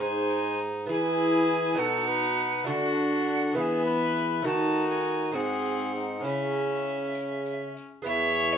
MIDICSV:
0, 0, Header, 1, 7, 480
1, 0, Start_track
1, 0, Key_signature, 4, "minor"
1, 0, Tempo, 593472
1, 719, Time_signature, 6, 3, 24, 8
1, 3602, Tempo, 601202
1, 6894, End_track
2, 0, Start_track
2, 0, Title_t, "Recorder"
2, 0, Program_c, 0, 74
2, 1, Note_on_c, 0, 80, 60
2, 480, Note_off_c, 0, 80, 0
2, 734, Note_on_c, 0, 80, 66
2, 1442, Note_on_c, 0, 78, 66
2, 1454, Note_off_c, 0, 80, 0
2, 2160, Note_off_c, 0, 78, 0
2, 2166, Note_on_c, 0, 78, 63
2, 2869, Note_off_c, 0, 78, 0
2, 2877, Note_on_c, 0, 78, 61
2, 2912, Note_on_c, 0, 76, 67
2, 2920, Note_off_c, 0, 78, 0
2, 3586, Note_off_c, 0, 76, 0
2, 3603, Note_on_c, 0, 81, 64
2, 3935, Note_off_c, 0, 81, 0
2, 3946, Note_on_c, 0, 80, 59
2, 4315, Note_on_c, 0, 78, 59
2, 4327, Note_off_c, 0, 80, 0
2, 5025, Note_off_c, 0, 78, 0
2, 5030, Note_on_c, 0, 76, 61
2, 6215, Note_off_c, 0, 76, 0
2, 6483, Note_on_c, 0, 76, 91
2, 6851, Note_on_c, 0, 73, 81
2, 6863, Note_off_c, 0, 76, 0
2, 6894, Note_off_c, 0, 73, 0
2, 6894, End_track
3, 0, Start_track
3, 0, Title_t, "Cornet"
3, 0, Program_c, 1, 56
3, 4, Note_on_c, 1, 72, 81
3, 486, Note_off_c, 1, 72, 0
3, 724, Note_on_c, 1, 68, 92
3, 1445, Note_on_c, 1, 69, 81
3, 1457, Note_off_c, 1, 68, 0
3, 1681, Note_on_c, 1, 71, 92
3, 1693, Note_off_c, 1, 69, 0
3, 2154, Note_off_c, 1, 71, 0
3, 2158, Note_on_c, 1, 66, 88
3, 2866, Note_off_c, 1, 66, 0
3, 2888, Note_on_c, 1, 68, 77
3, 3109, Note_off_c, 1, 68, 0
3, 3114, Note_on_c, 1, 71, 94
3, 3606, Note_on_c, 1, 66, 88
3, 3618, Note_off_c, 1, 71, 0
3, 4305, Note_off_c, 1, 66, 0
3, 4310, Note_on_c, 1, 68, 78
3, 4785, Note_off_c, 1, 68, 0
3, 4796, Note_on_c, 1, 63, 63
3, 5033, Note_off_c, 1, 63, 0
3, 5041, Note_on_c, 1, 61, 71
3, 5747, Note_off_c, 1, 61, 0
3, 6491, Note_on_c, 1, 68, 63
3, 6894, Note_off_c, 1, 68, 0
3, 6894, End_track
4, 0, Start_track
4, 0, Title_t, "Viola"
4, 0, Program_c, 2, 41
4, 9, Note_on_c, 2, 63, 60
4, 722, Note_off_c, 2, 63, 0
4, 729, Note_on_c, 2, 64, 64
4, 1446, Note_on_c, 2, 63, 69
4, 1458, Note_off_c, 2, 64, 0
4, 2162, Note_on_c, 2, 62, 63
4, 2174, Note_off_c, 2, 63, 0
4, 2887, Note_on_c, 2, 59, 69
4, 2899, Note_off_c, 2, 62, 0
4, 3591, Note_off_c, 2, 59, 0
4, 3596, Note_on_c, 2, 63, 59
4, 4312, Note_on_c, 2, 60, 61
4, 4324, Note_off_c, 2, 63, 0
4, 5021, Note_off_c, 2, 60, 0
4, 5026, Note_on_c, 2, 61, 54
4, 6291, Note_off_c, 2, 61, 0
4, 6489, Note_on_c, 2, 73, 84
4, 6894, Note_off_c, 2, 73, 0
4, 6894, End_track
5, 0, Start_track
5, 0, Title_t, "Lute"
5, 0, Program_c, 3, 24
5, 0, Note_on_c, 3, 44, 47
5, 0, Note_on_c, 3, 56, 41
5, 0, Note_on_c, 3, 63, 46
5, 0, Note_on_c, 3, 68, 44
5, 685, Note_off_c, 3, 56, 0
5, 690, Note_off_c, 3, 63, 0
5, 693, Note_off_c, 3, 44, 0
5, 694, Note_off_c, 3, 68, 0
5, 696, Note_on_c, 3, 59, 43
5, 702, Note_on_c, 3, 64, 42
5, 717, Note_on_c, 3, 68, 44
5, 724, Note_on_c, 3, 52, 52
5, 1403, Note_off_c, 3, 59, 0
5, 1407, Note_off_c, 3, 52, 0
5, 1407, Note_off_c, 3, 64, 0
5, 1412, Note_on_c, 3, 59, 45
5, 1414, Note_off_c, 3, 68, 0
5, 1421, Note_on_c, 3, 63, 45
5, 1434, Note_on_c, 3, 66, 47
5, 1440, Note_on_c, 3, 47, 48
5, 2123, Note_off_c, 3, 59, 0
5, 2126, Note_off_c, 3, 47, 0
5, 2127, Note_off_c, 3, 63, 0
5, 2134, Note_off_c, 3, 66, 0
5, 2135, Note_on_c, 3, 57, 51
5, 2142, Note_on_c, 3, 62, 46
5, 2153, Note_on_c, 3, 66, 46
5, 2165, Note_on_c, 3, 50, 51
5, 2846, Note_off_c, 3, 57, 0
5, 2850, Note_off_c, 3, 62, 0
5, 2851, Note_off_c, 3, 50, 0
5, 2854, Note_on_c, 3, 56, 44
5, 2856, Note_off_c, 3, 66, 0
5, 2864, Note_on_c, 3, 59, 45
5, 2873, Note_on_c, 3, 64, 46
5, 2884, Note_on_c, 3, 52, 53
5, 3567, Note_off_c, 3, 56, 0
5, 3571, Note_off_c, 3, 52, 0
5, 3572, Note_off_c, 3, 59, 0
5, 3574, Note_on_c, 3, 57, 47
5, 3576, Note_off_c, 3, 64, 0
5, 3586, Note_on_c, 3, 63, 47
5, 3593, Note_on_c, 3, 66, 46
5, 3605, Note_on_c, 3, 51, 48
5, 4283, Note_off_c, 3, 57, 0
5, 4288, Note_off_c, 3, 51, 0
5, 4289, Note_off_c, 3, 63, 0
5, 4290, Note_on_c, 3, 56, 45
5, 4292, Note_off_c, 3, 66, 0
5, 4299, Note_on_c, 3, 60, 41
5, 4305, Note_on_c, 3, 66, 43
5, 4320, Note_on_c, 3, 44, 50
5, 4991, Note_off_c, 3, 56, 0
5, 5001, Note_on_c, 3, 56, 44
5, 5008, Note_off_c, 3, 44, 0
5, 5008, Note_off_c, 3, 60, 0
5, 5011, Note_off_c, 3, 66, 0
5, 5013, Note_on_c, 3, 61, 40
5, 5025, Note_on_c, 3, 64, 40
5, 5029, Note_on_c, 3, 49, 48
5, 6207, Note_off_c, 3, 49, 0
5, 6433, Note_off_c, 3, 56, 0
5, 6439, Note_off_c, 3, 61, 0
5, 6445, Note_off_c, 3, 64, 0
5, 6450, Note_on_c, 3, 56, 48
5, 6460, Note_on_c, 3, 59, 51
5, 6469, Note_on_c, 3, 64, 51
5, 6479, Note_on_c, 3, 40, 51
5, 6894, Note_off_c, 3, 40, 0
5, 6894, Note_off_c, 3, 56, 0
5, 6894, Note_off_c, 3, 59, 0
5, 6894, Note_off_c, 3, 64, 0
5, 6894, End_track
6, 0, Start_track
6, 0, Title_t, "Bassoon"
6, 0, Program_c, 4, 70
6, 0, Note_on_c, 4, 44, 57
6, 690, Note_off_c, 4, 44, 0
6, 721, Note_on_c, 4, 52, 60
6, 1435, Note_on_c, 4, 47, 65
6, 1447, Note_off_c, 4, 52, 0
6, 2024, Note_off_c, 4, 47, 0
6, 2162, Note_on_c, 4, 50, 62
6, 2884, Note_on_c, 4, 52, 65
6, 2896, Note_off_c, 4, 50, 0
6, 3596, Note_off_c, 4, 52, 0
6, 3601, Note_on_c, 4, 51, 63
6, 4318, Note_on_c, 4, 44, 61
6, 4330, Note_off_c, 4, 51, 0
6, 5037, Note_on_c, 4, 49, 57
6, 5049, Note_off_c, 4, 44, 0
6, 6243, Note_off_c, 4, 49, 0
6, 6481, Note_on_c, 4, 40, 69
6, 6894, Note_off_c, 4, 40, 0
6, 6894, End_track
7, 0, Start_track
7, 0, Title_t, "Drums"
7, 8, Note_on_c, 9, 54, 49
7, 89, Note_off_c, 9, 54, 0
7, 245, Note_on_c, 9, 54, 46
7, 326, Note_off_c, 9, 54, 0
7, 477, Note_on_c, 9, 54, 43
7, 558, Note_off_c, 9, 54, 0
7, 720, Note_on_c, 9, 54, 68
7, 801, Note_off_c, 9, 54, 0
7, 1434, Note_on_c, 9, 54, 47
7, 1515, Note_off_c, 9, 54, 0
7, 1683, Note_on_c, 9, 54, 43
7, 1764, Note_off_c, 9, 54, 0
7, 1920, Note_on_c, 9, 54, 46
7, 2000, Note_off_c, 9, 54, 0
7, 2158, Note_on_c, 9, 54, 71
7, 2239, Note_off_c, 9, 54, 0
7, 2882, Note_on_c, 9, 54, 49
7, 2963, Note_off_c, 9, 54, 0
7, 3132, Note_on_c, 9, 54, 46
7, 3213, Note_off_c, 9, 54, 0
7, 3371, Note_on_c, 9, 54, 47
7, 3452, Note_off_c, 9, 54, 0
7, 3615, Note_on_c, 9, 54, 64
7, 3694, Note_off_c, 9, 54, 0
7, 4324, Note_on_c, 9, 54, 48
7, 4404, Note_off_c, 9, 54, 0
7, 4560, Note_on_c, 9, 54, 46
7, 4640, Note_off_c, 9, 54, 0
7, 4802, Note_on_c, 9, 54, 44
7, 4881, Note_off_c, 9, 54, 0
7, 5039, Note_on_c, 9, 54, 67
7, 5119, Note_off_c, 9, 54, 0
7, 5755, Note_on_c, 9, 54, 48
7, 5835, Note_off_c, 9, 54, 0
7, 6001, Note_on_c, 9, 54, 39
7, 6081, Note_off_c, 9, 54, 0
7, 6250, Note_on_c, 9, 54, 44
7, 6330, Note_off_c, 9, 54, 0
7, 6486, Note_on_c, 9, 54, 75
7, 6566, Note_off_c, 9, 54, 0
7, 6894, End_track
0, 0, End_of_file